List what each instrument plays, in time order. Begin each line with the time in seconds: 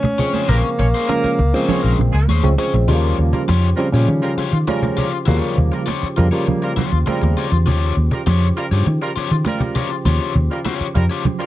Already playing: tenor saxophone C#4
0.03 muted overdriven electric guitar stroke, cajon bass, high conga
0.18 tine electric piano C#3 F3 G#3 C4, overdriven electric guitar C#4 G#4 C#5, cajon bass
0.34 overdriven electric guitar C#4 G#4 C5, high conga
0.48 fingered electric bass A#1, horn section A#3 A#4, tenor saxophone A#3, overdriven electric guitar C#4 G#4 C5, cajon bass, muted conga
0.64 muted overdriven electric guitar stroke
0.78 fingered electric bass A#1, horn section C#4 C#5, muted overdriven electric guitar stroke, cajon bass
0.94 overdriven electric guitar C#4 G#4 C5, cajon slap
1.07 tine electric piano C#3 F3 G#3 C#4, horn section A#3 A#4, muted overdriven electric guitar stroke, cajon slap, high conga
1.24 muted fingered electric bass stroke, muted overdriven electric guitar stroke
1.39 fingered electric bass C#2, cajon bass
1.54 tine electric piano C#3 F3 G#3 C4, overdriven electric guitar C#4 G#4 C5
1.68 horn section C#4 C#5, overdriven electric guitar C#4 G#4 C5, cajon bass, cajon slap, muted conga, low conga
1.83 fingered electric bass A#1, horn section A#3 A#4
1.99 fingered electric bass A#1, muted overdriven electric guitar stroke, muted conga, low conga
2.12 fingered electric bass C#2, horn section G#3 G#4, muted overdriven electric guitar stroke
2.28 fingered electric bass D#2, overdriven electric guitar C#4 G#4 C5, high conga
2.43 fingered electric bass C#2, tine electric piano C#3 F3 G#3 C4, muted overdriven electric guitar stroke, cajon slap, high conga
2.58 tine electric piano C#3 F3 G#3 C4, overdriven electric guitar C#4 G#4 C#5, cajon slap
2.73 fingered electric bass A#1, muted overdriven electric guitar stroke, cajon slap, high conga
2.88 fingered electric bass D#2, tine electric piano C#3 F3 G3 G#3, tonewheel organ C#3 F3 G4, overdriven electric guitar F4 G4 C#5, cajon bass, muted conga
2.95 tine electric piano A#3
3.19 fingered electric bass D#2, cajon slap
3.32 horn section G3 F4 A#4, muted overdriven electric guitar stroke, cajon bass, cajon slap
3.48 fingered electric bass F2, overdriven electric guitar F4 G4 C#5, cajon slap, high conga
3.63 cajon slap
3.76 tine electric piano C#3 F3 G3 C4, horn section G3 F4 A#4, muted overdriven electric guitar stroke
3.92 fingered electric bass A#2, tine electric piano C#3 F3 G3 C#4, overdriven electric guitar F4 G4 C#5, cajon slap
4.08 fingered electric bass D#3, muted overdriven electric guitar stroke, cajon slap, muted conga
4.22 horn section G3 F4 A#4, muted overdriven electric guitar stroke, cajon slap
4.37 overdriven electric guitar F4 G4 C#5, muted fingered electric bass stroke, cajon slap, muted conga
4.53 fingered electric bass D#3, muted overdriven electric guitar stroke, cajon slap
4.68 tine electric piano C#3 F3 G3 C#4, horn section G3 F4 A#4, muted overdriven electric guitar stroke, cajon slap, high conga
4.83 muted overdriven electric guitar stroke, cajon bass, high conga
4.97 overdriven electric guitar F4 G4 C#5, cajon bass
5.12 muted overdriven electric guitar stroke
5.26 fingered electric bass D#2, tine electric piano C#3 F3 G3 A#3, overdriven electric guitar E4 F#4 C5, cajon bass, muted conga
5.38 overdriven electric guitar F4 G4 C#5
5.58 fingered electric bass D#2, cajon bass
5.72 horn section G3 F4 A#4, muted overdriven electric guitar stroke, cajon slap
5.86 overdriven electric guitar F4 G4 C#5, cajon slap, high conga
6.03 muted fingered electric bass stroke
6.17 fingered electric bass F2, tine electric piano C#3 F3 G3 A#3, horn section G3 F4 A#4, muted overdriven electric guitar stroke, cajon bass
6.32 tine electric piano C#3 F3 G3 A#3, overdriven electric guitar F4 G4 C#5
6.46 muted overdriven electric guitar stroke, cajon bass, cajon slap, muted conga, low conga
6.62 horn section G3 F4 A#4, muted overdriven electric guitar stroke, cajon slap
6.77 overdriven electric guitar F4 G4 C#5, muted fingered electric bass stroke, cajon bass, muted conga, low conga
6.92 fingered electric bass D#2, muted overdriven electric guitar stroke, cajon slap
7.06 tine electric piano C#3 F3 G3 C4, horn section G3 F4 A#4, muted overdriven electric guitar stroke, muted fingered electric bass stroke, cajon slap, high conga
7.22 fingered electric bass D#2, muted overdriven electric guitar stroke, high conga
7.37 overdriven electric guitar F4 G4 C#5
7.52 fingered electric bass E2, muted overdriven electric guitar stroke, cajon slap
7.66 fingered electric bass D#2, overdriven electric guitar F4 G4 C#5, cajon bass, muted conga
7.97 fingered electric bass D#2, cajon slap
8.12 horn section G3 F4 A#4, muted overdriven electric guitar stroke, cajon bass, cajon slap
8.27 fingered electric bass F2, overdriven electric guitar F4 G4 C#5, cajon slap, high conga
8.56 horn section G3 F4 A#4, muted overdriven electric guitar stroke
8.71 fingered electric bass G2, overdriven electric guitar F4 G4 C#5
8.87 fingered electric bass D#3, muted overdriven electric guitar stroke, cajon slap, muted conga
9.01 horn section G3 F4 A#4, muted overdriven electric guitar stroke, cajon slap
9.16 overdriven electric guitar F4 G4 C#5, muted fingered electric bass stroke, cajon slap, muted conga
9.31 fingered electric bass D#3, muted overdriven electric guitar stroke, cajon slap
9.45 horn section G3 F4 A#4, muted overdriven electric guitar stroke, cajon slap, high conga
9.60 muted overdriven electric guitar stroke, cajon bass, high conga
9.75 overdriven electric guitar F4 G4 C#5, cajon bass
9.90 muted overdriven electric guitar stroke, cajon slap
10.05 fingered electric bass D#2, overdriven electric guitar F4 G4 C#5, cajon bass, muted conga
10.36 fingered electric bass D#2, cajon bass
10.50 horn section G3 F4 A#4, muted overdriven electric guitar stroke, cajon slap
10.65 overdriven electric guitar F4 G4 C#5, cajon slap, high conga
10.80 muted fingered electric bass stroke, cajon slap
10.95 fingered electric bass F2, horn section G3 F4 A#4, muted overdriven electric guitar stroke, cajon bass
11.10 overdriven electric guitar F4 G4 C#5
11.25 muted overdriven electric guitar stroke, cajon bass, cajon slap, muted conga, low conga
11.39 horn section G3 F4 A#4, muted overdriven electric guitar stroke, cajon slap